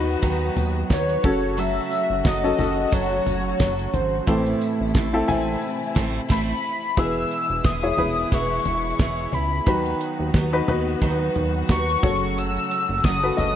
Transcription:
Already playing: D#2 D#3 F#3 B3 D#4 F#4 B4
0.22 D#2 D#3 F#3 B3 D#4 B4, kick, closed hi-hat, tambourine
0.56 D#2, closed hi-hat, floor tom, tambourine
0.89 D#2 F#3 B3 D#4 B4 C#5, kick, snare, closed hi-hat, tambourine
1.09 closed hi-hat
1.23 F#1 C#3 A3 C#4 F#4 A4, kick, closed hi-hat, tambourine
1.57 F#3 C#4 F#4 A4 E5, closed hi-hat, tambourine
1.91 closed hi-hat, tambourine
2.10 F#1
2.24 F#1 F#3 C#4 F#4 A4 D#5, kick, snare, closed hi-hat, tambourine
2.44 C#4 F#4 A4
2.57 F#1 C#4 F#4 A4, closed hi-hat, floor tom, tambourine
2.92 F#1 F#3 C#4 F#4 A4 C#5, kick, closed hi-hat, tambourine
3.26 F#1, closed hi-hat, floor tom, tambourine
3.59 F#1 F#3 C#4 F#4 A4, kick, snare, closed hi-hat, tambourine
3.79 closed hi-hat
3.93 G#1 C5, closed hi-hat, floor tom
4.27 A1 A2 C3 E3 A3 C4 E4 A4, kick, closed hi-hat
4.46 closed hi-hat
4.61 closed hi-hat, tambourine
4.80 A1
4.94 A1 A3 C4 E4 A4, kick, snare, closed hi-hat, tambourine
5.13 C4 E4 A4
5.28 A1 A3 C4 E4 A4 G#5, closed hi-hat, floor tom, tambourine
5.95 A1 A2 E3 A3 C4 E4 A4, kick, snare, crash
6.28 A1 A3 C4 E4 A4 B5, kick, snare, crash
6.97 E1 B2 E3 G#3 B3 E4 G#4 B4 E6, kick, closed hi-hat
7.31 closed hi-hat
7.49 E1
7.64 E1 G#3 B3 E4 G#4 D#6, kick, snare, closed hi-hat
7.83 E4 G#4 C#5
7.97 E1 B3 E4 G#4 B4, closed hi-hat, floor tom
8.32 E1 E3 G#3 B3 E4 G#4 C#6, kick, closed hi-hat
8.65 E1, closed hi-hat, floor tom
8.99 E1 G#3 B3 E4 G#4, kick, snare, closed hi-hat
9.19 closed hi-hat
9.32 C#2 B3 E4 G#4 B5, closed hi-hat, floor tom
9.66 D#2 D#3 F#3 B3 D#4 F#4 B4, kick, closed hi-hat
9.86 closed hi-hat
10.01 closed hi-hat
10.19 D#2
10.34 D#2 F#3 B3 D#4 B4, kick, snare, closed hi-hat
10.53 D#4 F#4 B4
10.68 D#2 B3 D#4 F#4 B4, closed hi-hat, floor tom
11.02 D#2 D#3 F#3 B3 D#4 B4, kick, closed hi-hat
11.36 D#2, closed hi-hat, floor tom
11.68 D#2 F#3 B3 D#4 B4 C#6, kick, snare, closed hi-hat
11.89 closed hi-hat
12.03 F#1 C#3 F#3 A3 C#4 F#4 A4 C#5, kick, closed hi-hat, floor tom
12.38 E6, closed hi-hat
12.57 closed hi-hat
12.71 closed hi-hat
12.89 F#1
13.03 F#1 F#3 C#4 F#4 A4 D#6, kick, snare, closed hi-hat
13.23 F#4 A4 B4
13.37 F#1 C#4 F#4 A4 D#5 D#6, closed hi-hat, floor tom

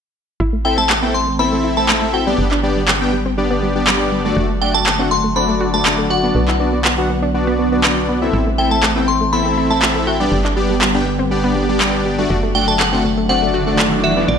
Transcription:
0.40 A1 E3 A3 C4 E4
0.53 A3
0.65 C4 E4 A4 E5 G5
0.78 A3 A5
0.90 A3, clap
1.03 B3 C4 E4 A4 G5
1.14 A3 C6
1.27 A3
1.39 B3 C4 E4 A4 E5 B5
1.52 A3
1.64 E4
1.77 A3 C4 E4 A4 E5 A5
1.89 A3, clap
2.02 A3
2.14 F#4 G5
2.27 G3 B3 D4 G4 D5
2.38 G1 D3 G3 B3
2.51 D4, clap
2.63 G3 B3 D4 G4 D5
2.76 G3
2.88 G3, clap
3.01 B3 D4 G4 G5
3.13 G3
3.26 C4
3.38 G3 B3 D4 G4 D5
3.50 B3
3.62 G3
3.75 G3 B3 D4 G4 D5
3.87 G3, clap
4.12 G3
4.25 G3 A3 D4 F#4 D5
4.37 F#1 F#3 A3 F#4
4.50 A3
4.62 A3 D4 F#4 D5 G5
4.74 A3 A5
4.86 A3, clap
4.99 A3 C4 D4 F#4 F#5
5.11 A3 C6
5.24 A3
5.36 A3 C4 D4 F#4 D5 B5
5.49 A3
5.61 F#4
5.74 A3 D4 F#4 D5 A5
5.85 A3, clap
5.98 A3
6.10 F#4 F#5
6.23 B3 D4 F#4 D5
6.35 B1 B3
6.48 E4, clap
6.60 B3 D4 F#4 D5
6.73 B3
6.85 B3, clap
6.98 B3 D4 F#4 F#5
7.09 B3
7.22 D4
7.34 B3 D4 F#4 D5
7.47 B3
7.59 B3
7.72 B3 D4 F#4 D5
7.84 B3, clap
8.09 B3
8.22 B3 C4 E4 A4 E5
8.33 A1 E3 A3 C4 E4
8.46 A3
8.58 C4 E4 A4 E5 G5
8.71 A3 A5
8.83 A3, clap
8.96 B3 C4 E4 A4 G5
9.08 A3 C6
9.21 A3
9.33 B3 C4 E4 A4 E5 B5
9.46 A3
9.57 E4
9.70 A3 C4 E4 A4 E5 A5
9.82 A3, clap
9.95 A3
10.07 F#4 G5
10.20 G3 B3 D4 G4 D5
10.32 G1 D3 G3 B3
10.45 D4, clap
10.57 G3 B3 D4 G4 D5
10.70 G3
10.81 G3, clap
10.94 B3 D4 G4 G5
11.06 G3
11.19 C4
11.31 G3 B3 D4 G4 D5
11.44 B3
11.56 G3
11.69 G3 B3 D4 G4 D5
11.80 G3, clap
12.05 G3
12.18 G3 A3 D4 F#4 D5
12.30 F#1 D3 F#3 A3 F#4, riser
12.43 A3
12.55 A3 D4 F#4 D5 G5
12.68 A3 A5
12.80 A3 F#5, clap
12.93 A3 C4 D4 F#4 F#5
13.04 A3
13.17 A3
13.29 A3 C4 D4 F#4 D5 F#5
13.42 A3
13.54 F#4
13.67 A3 D4 F#4 D5
13.79 A3, clap
13.92 A3
14.04 F#4 E5
14.17 B3 D4 F#4 D5
14.28 B1 D3 B3 D5

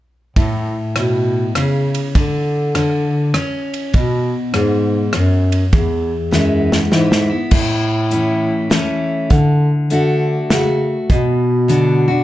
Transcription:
0.36 A2, kick, ride
0.96 B2, cross-stick, ride
1.55 C#3, cross-stick, ride
1.95 ride
2.15 D3, kick, ride
2.75 D3, cross-stick, ride
3.34 C#4, cross-stick, ride
3.74 ride
3.93 B2, kick, ride
4.54 G#2, cross-stick, ride
5.13 F#2, cross-stick, ride
5.52 ride
5.73 E2, kick, ride
6.31 F#2 E3 G#3 B3 E4, snare
6.72 snare
6.91 G#2 E3 G#3 B3 E4, snare
7.12 snare
7.30 B3 E4
7.51 A2, kick, crash
8.11 E3 A3 C#4 E4, closed hi-hat
8.70 E3 A3 C#4 E4, snare, closed hi-hat
9.30 D3, kick, closed hi-hat
9.90 D3 A3 D4 F#4, closed hi-hat
10.50 C#3 A3 F#4, snare, closed hi-hat
11.10 B2, kick, closed hi-hat
11.68 D3 B3 D4 F#4, closed hi-hat
12.08 D4 F#4

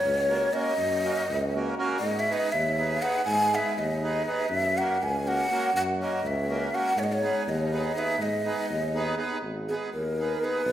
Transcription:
Already playing: C#5
0.04 C#2
0.28 A#3 C#4 F#4 A#4
0.52 A#3 C#4 F#4 A#4 D#5
0.78 F#2
1.04 A#3 C#4 F#4 A#4
1.29 C#2
1.54 A#3 C#4 F#4 A#4
1.77 A#3 C#4 F#4 A#4
1.99 G#2 D#5
2.19 E5
2.29 B3 D#4 G#4 B4 D#5
2.52 D#2 E5
2.78 B3 D#4 G#4 B4
3.02 B3 D#4 G#4 B4 F#5
3.25 G#2 G#5
3.52 B3 D#4 G#4 B4 E5
3.77 D#2 D#5
4.02 B3 D#4 G#4 B4
4.26 B3 D#4 G#4 B4
4.49 F#2 E5
4.77 A#3 C#4 F#4 A#4 F#5
5.02 C#2 G#5
5.26 A#3 C#4 F#4 A#4 F#5
5.50 A#3 C#4 F#4 A#4
5.74 F#2 F#5
5.99 A#3 C#4 F#4 A#4 D#5
6.23 C#2 E5
6.48 A#3 C#4 F#4 A#4
6.72 A#3 C#4 F#4 A#4 F#5
6.96 G#2 C#5
7.04 D#5
7.13 C#5
7.21 B3 D#4 G#4 B4
7.48 D#2 D#5
7.70 B3 D#4 G#4 B4
7.95 B3 D#4 G#4 B4 E5
8.19 G#2 D#5
8.44 B3 D#4 G#4 B4
8.70 D#2
8.93 B3 D#4 G#4 B4
9.17 B3 D#4 G#4 B4
9.42 G#1
9.68 B3 D#4 G#4 B4
9.93 D#2 A#4
10.19 B3 D#4 G#4 B4
10.41 B3 D#4 G#4 B4
10.66 B1

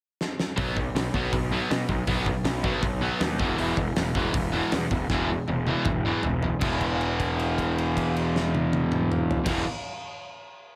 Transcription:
0.21 snare
0.39 snare
0.57 B1 B2 F#3 B3, kick, open hi-hat
0.77 B1 B2 F#3, kick
0.95 B1 B2 F#3, snare, open hi-hat
1.14 B1 B2 F#3 B3, kick
1.33 B1 B2 F#3, kick, open hi-hat
1.52 B2 F#3 B3
1.71 B2 F#3, snare, open hi-hat
1.89 B1 B2 F#3, kick
2.07 B1 B2 F#3 B3, kick, open hi-hat
2.26 B2 F#3, kick
2.44 B1 B2 F#3, snare, open hi-hat
2.64 B2 F#3 B3, kick
2.82 B1 B2 F#3, kick, open hi-hat
3.01 B2 F#3 B3
3.20 D#2 B2 F#3, snare, open hi-hat
3.39 E1 E2 B2 E3, kick
3.57 E1 E2 B2 E3, open hi-hat
3.76 E1 E2 B2, kick
3.96 E1 E2 B2, snare, open hi-hat
4.15 E1 E2 B2 E3, kick
4.33 E1 E2 B2, kick, open hi-hat
4.52 E2 B2 E3
4.72 E2 B2, snare, open hi-hat
4.91 E1 E2 B2, kick
5.10 E1 E2 B2 E3, kick, snare
5.30 E2 B2
5.48 E1 E2 B2, high tom
5.67 E2 B2 E3, high tom
5.85 E1 E2 B2, kick, mid tom
6.05 E2 B2 E3
6.23 E1 E2 B2, floor tom
6.43 E2 B2, floor tom
6.61 E1 E2 B2 E3, kick, crash
6.81 kick, crash
7.01 crash
7.20 kick, crash
7.39 crash
7.58 kick, crash
7.78 crash
7.97 kick, crash
8.16 crash
8.36 snare
8.55 high tom
8.73 high tom
8.92 mid tom
9.12 mid tom
9.31 floor tom
9.46 E1 E2 B2 E3, kick, snare, crash

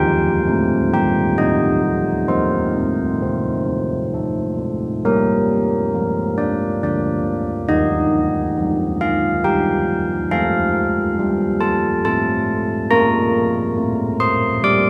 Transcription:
Already playing: C5 G5
0.02 F3
0.48 A3
0.94 G3 G5
1.38 A3 D#5
1.83 G3
2.28 F3 A#4 C5
2.77 A3
3.22 C4
3.66 A3
4.14 F3 A4
4.58 A3
5.05 G3 G4 A#4
5.95 F3
6.38 D5
6.83 D3 D5
7.69 D#3 G4 D#5
8.57 F3
9.01 F5
9.44 G3 G5
10.31 F3 A4 F5
11.19 G3
11.61 A5
12.05 A3 A5
12.91 A#3 F4 A#5
13.77 A3
14.20 C6
14.64 G3 D6

